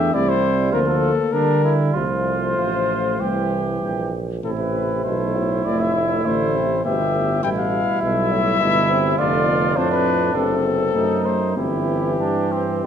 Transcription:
Already playing: tuba E2, euphonium A3, french horn D4, flugelhorn G4, trumpet E5
0.13 tuba C2, euphonium G3, french horn C4, flugelhorn E4, trumpet D5
0.29 trumpet C5
0.73 tuba D2, euphonium F3, french horn A#3, flugelhorn F4, trumpet A#4
0.87 trumpet A4
1.32 tuba D3, euphonium G3, flugelhorn D4, trumpet A#4
1.64 flugelhorn E4
1.94 tuba C2, euphonium F3, french horn A3, flugelhorn F4, trumpet C5
2.58 tuba A1
3.20 tuba C2, euphonium E3, french horn G3, flugelhorn G4
3.82 tuba A#1
4.43 tuba A1, euphonium C3, french horn A3, flugelhorn E4, trumpet A4
4.59 trumpet B4
5.04 tuba B1, euphonium B2, flugelhorn E4, trumpet C5
5.36 euphonium A2
5.65 tuba F1, euphonium A2, french horn A3, trumpet D5
5.80 trumpet E5
6.25 tuba A1, euphonium D3, french horn A3, trumpet C5
6.56 euphonium C3
6.84 tuba G1, euphonium B2, french horn B3, flugelhorn G4, trumpet E5
7.14 euphonium A2
7.43 tuba A1, euphonium B2, french horn G3, flugelhorn E4, trumpet G5
7.58 trumpet F5
8.02 tuba B1, euphonium B2, french horn G3, trumpet E5
8.32 euphonium A2
8.60 tuba G1, euphonium B2, flugelhorn E4
8.90 euphonium C3
9.18 tuba F1, euphonium D3, french horn A3, flugelhorn F4, trumpet D5
9.48 french horn B3
9.76 tuba F2, euphonium A2, french horn C4, flugelhorn D4, trumpet C5
9.92 trumpet B4
10.34 tuba F#1, euphonium C3, french horn C4, trumpet A4
10.65 french horn B3
10.94 tuba F#2, french horn A3, flugelhorn D#4
11.25 french horn A3, trumpet C5
11.56 tuba G1, euphonium E3, french horn C4, flugelhorn E4, trumpet G4
12.20 tuba G2, flugelhorn D4
12.52 flugelhorn C4

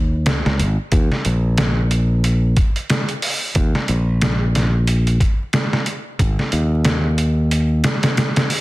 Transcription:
Already playing: fingered electric bass D#2
0.26 fingered electric bass C#2, snare, closed hi-hat
0.46 fingered electric bass C#2, snare
0.59 fingered electric bass G#1, closed hi-hat
0.92 fingered electric bass D#2, kick, closed hi-hat
1.12 snare
1.25 fingered electric bass A#1, closed hi-hat
1.58 snare, closed hi-hat
1.91 closed hi-hat
2.24 closed hi-hat
2.57 kick, closed hi-hat
2.76 closed hi-hat
2.90 snare, closed hi-hat
3.09 closed hi-hat
3.22 open hi-hat
3.55 fingered electric bass D#2, kick, closed hi-hat
3.75 snare
3.88 fingered electric bass A#1, closed hi-hat
4.21 snare, closed hi-hat
4.55 snare, closed hi-hat
4.87 closed hi-hat
5.07 closed hi-hat
5.20 kick, closed hi-hat
5.53 snare, closed hi-hat
5.73 snare
5.86 closed hi-hat
6.19 fingered electric bass G#1, kick, closed hi-hat
6.39 snare
6.52 fingered electric bass D#2, closed hi-hat
6.85 snare, closed hi-hat
7.18 closed hi-hat
7.51 closed hi-hat
7.84 snare, closed hi-hat
8.03 snare, closed hi-hat
8.17 snare, closed hi-hat
8.36 snare, closed hi-hat
8.50 open hi-hat

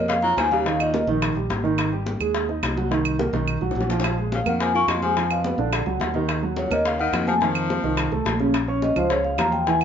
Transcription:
Already playing: fingered electric bass F2, grand piano A#3 A#4
0.08 tenor saxophone C#3, vibraphone F5, high bongo, high conga
0.23 tenor saxophone F#3, grand piano F4 F5, vibraphone A#5, high conga
0.37 fingered electric bass D#2, tenor saxophone F3, vibraphone G#5, high bongo, low bongo, high conga, claves
0.51 tenor saxophone C#3, grand piano G3 G4, vibraphone F5, high conga
0.65 grand piano D#3 D#4, high bongo, high conga
0.80 tenor saxophone A#2, vibraphone D#5, high conga, claves
0.94 grand piano A#3 A#4, high bongo, high conga
1.07 fingered electric bass A#1, grand piano D#3 D#4, high bongo, high conga
1.22 high bongo, claves
1.35 fingered electric bass A#1, grand piano G3 G4, high bongo, high conga
1.50 fingered electric bass G#1, high bongo, low bongo, high conga
1.64 grand piano D#3 D#4, high bongo
1.78 high bongo, high conga, claves
1.92 grand piano G3 G4, high conga
2.06 high bongo, high conga
2.20 fingered electric bass D#2, grand piano G#3 G#4, high conga, claves
2.35 high bongo, high conga
2.49 grand piano D#4 D#5, high conga
2.63 fingered electric bass C2, high bongo, low bongo, high conga, claves
2.77 grand piano F#3 F#4, high conga
2.91 grand piano D#3 D#4, high bongo, high conga
3.05 high conga, claves
3.19 grand piano A#3 A#4, high bongo, high conga
3.33 fingered electric bass B1, grand piano D#3 D#4, high bongo
3.48 high conga, claves
3.61 fingered electric bass B1, grand piano F#3 F#4, high conga
3.71 low bongo
3.75 fingered electric bass A#1, high conga
3.81 low bongo
3.90 grand piano F3 F4, low bongo
4.00 low bongo
4.04 high bongo, high conga, claves
4.18 grand piano G#3 G#4, high conga
4.32 tenor saxophone C#3, vibraphone F5, high bongo, high conga
4.46 fingered electric bass F2, tenor saxophone D#3, grand piano A#3 A#4, vibraphone F#5, high conga, claves
4.60 tenor saxophone F3, vibraphone G#5, high bongo
4.74 tenor saxophone A#3, grand piano F4 F5, vibraphone C#6, high conga
4.88 fingered electric bass F2, tenor saxophone G#3, vibraphone C6, high bongo, low bongo, high conga, claves
5.02 tenor saxophone F3, grand piano G#3 G#4, vibraphone G#5, high conga
5.16 grand piano F3 F4, high bongo, high conga
5.30 tenor saxophone B2, vibraphone F5, high conga, claves
5.44 grand piano B3 B4, high bongo, high conga
5.58 fingered electric bass A#1, grand piano D3 D4, high bongo, high conga
5.72 high bongo, high conga, claves
5.86 fingered electric bass C#2, grand piano F#3 F#4, high bongo, high conga
6.00 fingered electric bass D#2, high bongo, low bongo, high conga
6.14 grand piano D#3 D#4, high bongo, high conga
6.29 high bongo, high conga, claves
6.43 grand piano F#3 F#4, high conga
6.56 tenor saxophone A#2, vibraphone C#5, high bongo, high conga
6.71 fingered electric bass D#2, tenor saxophone C3, grand piano A#3 A#4, vibraphone D#5, high conga, claves
6.85 tenor saxophone C#3, vibraphone F5, high bongo, high conga
6.99 tenor saxophone D#3, grand piano D#4 D#5, vibraphone F#5, high conga
7.13 fingered electric bass F2, high bongo, low bongo, high conga, claves
7.27 tenor saxophone F3, grand piano A3 A4, vibraphone G#5, high conga
7.41 grand piano D#3 D#4, tenor saxophone F3, vibraphone A5, high bongo, high conga
7.55 high conga, claves
7.70 grand piano C4 C5, high bongo, high conga
7.84 fingered electric bass C2, grand piano D#3 D#4, high bongo, high conga
7.97 high bongo, high conga, claves
8.12 fingered electric bass C2, grand piano A3 A4, high bongo, high conga
8.25 fingered electric bass A#1, high bongo, low bongo, high conga
8.40 grand piano C#3 C#4, high bongo, high conga
8.54 high bongo, high conga, claves
8.68 grand piano C#4 C#5 C#6, high conga
8.82 vibraphone D#5, high bongo, high conga
8.96 fingered electric bass C#2, grand piano F3 F4 F5, vibraphone C5, high conga, low conga, claves
9.10 grand piano C#3 C#4 C#5, vibraphone C#5, high bongo, high conga
9.24 vibraphone F5, high conga
9.38 fingered electric bass E2, grand piano F3 F4 F5, vibraphone A#5, high bongo, low bongo, high conga, claves
9.52 vibraphone G5, high conga
9.67 grand piano E3 E4 E5, vibraphone G#5, high bongo
9.81 vibraphone F#5, high conga, claves

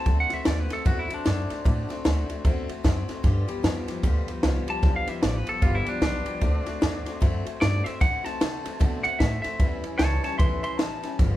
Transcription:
Already playing: clean electric guitar A5
0.06 upright bass D2, steel-string acoustic guitar D3 A3 C4 F#4, kick, ride
0.20 clean electric guitar F#5
0.30 steel-string acoustic guitar A3 C4 F#4, clean electric guitar E5, muted upright bass stroke, snare, ride
0.45 upright bass D#2, steel-string acoustic guitar D3 A3 C4 F#4, clean electric guitar D5, snare, ride
0.59 clean electric guitar B4
0.69 steel-string acoustic guitar A3 C4 F#4, muted upright bass stroke, snare, ride
0.73 clean electric guitar A4
0.85 upright bass E2, steel-string acoustic guitar D3 A3 C4 F#4, clean electric guitar F#4, kick, ride
0.99 clean electric guitar E4
1.09 steel-string acoustic guitar A3 C4 F#4, muted upright bass stroke, ride
1.14 clean electric guitar D4
1.24 upright bass F#2, steel-string acoustic guitar D3 A3 C4 F#4, clean electric guitar D4, snare, ride
1.49 steel-string acoustic guitar A3 C4 F#4, muted upright bass stroke, snare, ride
1.64 upright bass A2, steel-string acoustic guitar D3 A3 C4 F#4, kick, ride
1.89 steel-string acoustic guitar A3 C4 F#4, muted upright bass stroke, snare, ride
2.04 upright bass D2, steel-string acoustic guitar D3 A3 C4 F#4, snare, ride
2.29 steel-string acoustic guitar A3 C4 F#4, muted upright bass stroke, ride
2.45 upright bass E2, steel-string acoustic guitar D3 A3 C4 F#4, kick, ride
2.68 steel-string acoustic guitar A3 C4 F#4, muted upright bass stroke, ride
2.84 upright bass F#2, steel-string acoustic guitar D3 A3 C4 F#4, kick, snare, ride
3.08 steel-string acoustic guitar A3 C4 F#4, muted upright bass stroke, snare, ride
3.23 steel-string acoustic guitar G2 D3 F3 G3 B3 G4, upright bass G2, kick, snare, ride
3.48 steel-string acoustic guitar F3 G3 B3 G4, muted upright bass stroke, ride
3.63 upright bass F2, steel-string acoustic guitar F3 G3 B3 G4, snare, ride
3.88 steel-string acoustic guitar F3 G3 B3 G4, muted upright bass stroke, snare, ride
4.03 upright bass D2, steel-string acoustic guitar G2 D3 F3 G3 B3 G4, kick, ride
4.28 steel-string acoustic guitar F3 G3 B3 G4, muted upright bass stroke, ride
4.43 upright bass C2, steel-string acoustic guitar F3 G3 B3 G4, snare, ride
4.67 steel-string acoustic guitar F3 G3 B3 G4, clean electric guitar A5, muted upright bass stroke, ride
4.82 upright bass B1, steel-string acoustic guitar G2 D3 F3 G3 B3 G4, kick, snare, ride
4.96 clean electric guitar F5
5.07 steel-string acoustic guitar F3 G3 B3 G4, clean electric guitar E5, muted upright bass stroke, snare, ride
5.22 upright bass A1, steel-string acoustic guitar F3 G3 B3 G4, clean electric guitar D5, snare, ride
5.36 clean electric guitar B4
5.46 steel-string acoustic guitar F3 G3 B3 G4, clean electric guitar A4, muted upright bass stroke, ride
5.62 upright bass G1, steel-string acoustic guitar G2 D3 F3 G3 B3 G4, clean electric guitar F4, kick, ride
5.75 clean electric guitar E4
5.85 steel-string acoustic guitar F3 G3 B3 G4, clean electric guitar D4, muted upright bass stroke, ride
6.01 upright bass B1, steel-string acoustic guitar F3 G3 B3 G4, clean electric guitar D4, kick, snare, ride
6.25 steel-string acoustic guitar F3 G3 B3 G4, muted upright bass stroke, ride
6.41 upright bass D2, steel-string acoustic guitar D3 A3 C4 F#4, kick, ride
6.66 steel-string acoustic guitar A3 C4 F#4, muted upright bass stroke, snare, ride
6.81 upright bass E2, steel-string acoustic guitar D3 A3 C4 F#4, snare, ride
7.06 steel-string acoustic guitar A3 C4 F#4, muted upright bass stroke, snare, ride
7.20 upright bass F#2, steel-string acoustic guitar D3 A3 C4 F#4, kick, ride
7.45 steel-string acoustic guitar A3 C4 F#4, muted upright bass stroke, ride
7.60 upright bass G2, steel-string acoustic guitar D3 A3 C4 F#4, clean electric guitar D5, snare, ride
7.84 steel-string acoustic guitar A3 C4 F#4, clean electric guitar E5, muted upright bass stroke, snare, ride
8.00 upright bass A2, steel-string acoustic guitar D3 A3 C4 F#4, clean electric guitar F#5, kick, snare, ride
8.24 steel-string acoustic guitar A3 C4 F#4, clean electric guitar A5, muted upright bass stroke, snare, ride
8.40 upright bass C3, steel-string acoustic guitar D3 A3 C4 F#4, snare, ride
8.64 steel-string acoustic guitar A3 C4 F#4, muted upright bass stroke, snare, ride
8.80 upright bass B2, steel-string acoustic guitar D3 A3 C4 F#4, kick, ride
9.04 steel-string acoustic guitar A3 C4 F#4, clean electric guitar F#5, muted upright bass stroke, ride
9.19 upright bass A2, steel-string acoustic guitar D3 A3 C4 F#4, clean electric guitar E5, kick, snare, ride
9.42 steel-string acoustic guitar A3 C4 F#4, clean electric guitar E5, muted upright bass stroke, snare, ride
9.59 upright bass E2, steel-string acoustic guitar A2 E3 G3 C#4 E4, kick, ride
9.83 steel-string acoustic guitar G3 C#4 E4, muted upright bass stroke, ride
9.98 upright bass C#2, steel-string acoustic guitar E3 G3 C#4 E4, clean electric guitar C#5 A5, snare, ride
10.23 steel-string acoustic guitar G3 C#4 E4, clean electric guitar C#5 A5, muted upright bass stroke, snare, ride
10.38 upright bass B1, steel-string acoustic guitar A2 E3 G3 C#4 E4, clean electric guitar E5 C6, kick, ride
10.63 steel-string acoustic guitar G3 C#4 E4, clean electric guitar E5 C6, muted upright bass stroke, ride
10.78 upright bass A1, steel-string acoustic guitar E3 G3 C#4 E4, clean electric guitar A5, snare, ride
11.03 steel-string acoustic guitar G3 C#4 E4, muted upright bass stroke, snare, ride
11.19 upright bass G1, steel-string acoustic guitar G2 D3 F3 G3 B3 G4, kick, snare, ride

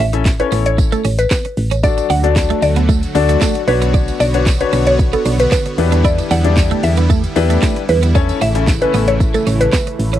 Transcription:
0.00 fm bass A1, clean electric guitar C#4, synth pluck E5
0.13 grand piano C#4 E4 A4 E5, muted clean electric guitar stroke, closed hi-hat, shaker
0.25 kick, snare, clap, tambourine, shaker
0.39 grand piano C#4 E4 A4 C#5, synth pluck B4, closed hi-hat, shaker
0.52 fm bass A1, clean electric guitar B3, open hi-hat, tambourine, shaker
0.66 synth pluck C#5, closed hi-hat, shaker
0.78 muted clean electric guitar stroke, kick, tambourine, shaker
0.92 clean electric guitar A3, synth pluck A4, closed hi-hat, tambourine, shaker
1.04 fm bass A1, clean electric guitar C#4, open hi-hat, tambourine, shaker
1.18 synth pluck B4, closed hi-hat, tambourine, shaker
1.31 clean electric guitar B3, synth pluck B4, kick, snare, clap, tambourine, shaker
1.45 muted clean electric guitar stroke, closed hi-hat, shaker
1.57 fm bass A1, open hi-hat, shaker
1.71 clean electric guitar C#4, closed hi-hat, tambourine, shaker
1.83 supersaw synth D3 F#3 A3 F#4, grand piano D4 F#4 A4 D5, clean electric guitar D4, synth pluck D5, kick, tambourine, shaker
1.98 muted clean electric guitar stroke, closed hi-hat, tambourine, shaker
2.10 fm bass D2, clean electric guitar D4, synth pluck F#5, open hi-hat, tambourine, shaker
2.23 grand piano D4 F#4 A4 D5, closed hi-hat, shaker
2.36 kick, snare, clap, tambourine, shaker
2.50 clean electric guitar A3, closed hi-hat, shaker
2.62 fm bass D2, synth pluck D5, muted clean electric guitar stroke, open hi-hat, tambourine, shaker
2.76 clean electric guitar B3, closed hi-hat, tambourine, shaker
2.89 clean electric guitar A3, kick, tambourine, shaker
3.03 closed hi-hat, tambourine, shaker
3.15 fm bass D2, grand piano D4 F#4 A4 D5, muted clean electric guitar stroke, open hi-hat, tambourine, shaker
3.29 clean electric guitar A3, closed hi-hat, tambourine, shaker
3.41 clean electric guitar A3, kick, snare, clap, tambourine, shaker
3.55 muted clean electric guitar stroke, closed hi-hat, shaker
3.67 fm bass B1, supersaw synth B3 C#5, grand piano D4 F#4 B4 C#5, synth pluck B4, open hi-hat, shaker
3.82 clean electric guitar B3, closed hi-hat, tambourine, shaker
3.94 clean electric guitar D4, kick, tambourine, shaker
4.08 closed hi-hat, tambourine, shaker
4.20 fm bass B1, clean electric guitar D4, synth pluck D5, open hi-hat, tambourine, shaker
4.34 grand piano D4 F#4 B4 C#5, muted clean electric guitar stroke, closed hi-hat, shaker
4.46 kick, snare, clap, tambourine, shaker
4.60 grand piano D4 F#4 B4 C#5, synth pluck B4, closed hi-hat, shaker
4.73 fm bass B1, clean electric guitar C#4, open hi-hat, tambourine, shaker
4.87 synth pluck C#5, closed hi-hat, tambourine, shaker
4.99 muted clean electric guitar stroke, kick, tambourine, shaker
5.13 clean electric guitar B3, synth pluck A4, closed hi-hat, tambourine, shaker
5.26 fm bass B1, clean electric guitar D4, open hi-hat, tambourine, shaker
5.40 synth pluck B4, closed hi-hat, tambourine, shaker
5.51 clean electric guitar B3, synth pluck B4, kick, snare, clap, tambourine, shaker
5.66 muted clean electric guitar stroke, closed hi-hat, shaker
5.78 fm bass E2, supersaw synth G3 E4, grand piano D4 E4 G4 B4, open hi-hat, shaker
5.92 clean electric guitar D4, closed hi-hat, tambourine, shaker
6.04 clean electric guitar E4, synth pluck D5, kick, tambourine, shaker
6.19 muted clean electric guitar stroke, closed hi-hat, tambourine, shaker
6.31 fm bass E2, clean electric guitar D4, synth pluck F#5, open hi-hat, tambourine, shaker
6.45 grand piano D4 E4 G4 D5, closed hi-hat, shaker
6.57 kick, snare, clap, tambourine, shaker
6.71 clean electric guitar A3, closed hi-hat, shaker
6.83 fm bass E2, synth pluck E5, muted clean electric guitar stroke, open hi-hat, tambourine, shaker
6.97 clean electric guitar B3, closed hi-hat, tambourine, shaker
7.10 clean electric guitar A3, kick, tambourine, shaker
7.24 closed hi-hat, tambourine, shaker
7.36 fm bass E2, grand piano D4 E4 G4 B4, muted clean electric guitar stroke, open hi-hat, tambourine, shaker
7.50 clean electric guitar A3, closed hi-hat, tambourine, shaker
7.62 clean electric guitar A3, kick, snare, clap, tambourine, shaker
7.76 muted clean electric guitar stroke, closed hi-hat, shaker
7.89 fm bass E2, synth pluck B4, open hi-hat, shaker
8.03 clean electric guitar B3, closed hi-hat, tambourine, shaker
8.15 supersaw synth C#3 E3 A3, grand piano C#4 E4 A4 C#5, clean electric guitar C#4, kick, tambourine, shaker
8.29 closed hi-hat, tambourine, shaker
8.41 fm bass A1, clean electric guitar C#4, synth pluck E5, open hi-hat, tambourine, shaker
8.55 grand piano C#4 E4 A4 E5, muted clean electric guitar stroke, closed hi-hat, shaker
8.68 kick, snare, clap, tambourine, shaker
8.81 grand piano C#4 E4 A4 B4, synth pluck B4, closed hi-hat, shaker
8.94 fm bass A1, clean electric guitar B3, open hi-hat, tambourine, shaker
9.08 synth pluck C#5, closed hi-hat, shaker
9.20 muted clean electric guitar stroke, kick, tambourine, shaker
9.34 clean electric guitar A3, synth pluck A4, closed hi-hat, tambourine, shaker
9.47 fm bass A1, clean electric guitar C#4, open hi-hat, tambourine, shaker
9.61 synth pluck B4, closed hi-hat, shaker
9.73 clean electric guitar B3, synth pluck B4, kick, snare, clap, tambourine, shaker
9.87 muted clean electric guitar stroke, closed hi-hat, shaker
9.99 fm bass A1, open hi-hat, shaker
10.13 clean electric guitar C#4, closed hi-hat, shaker

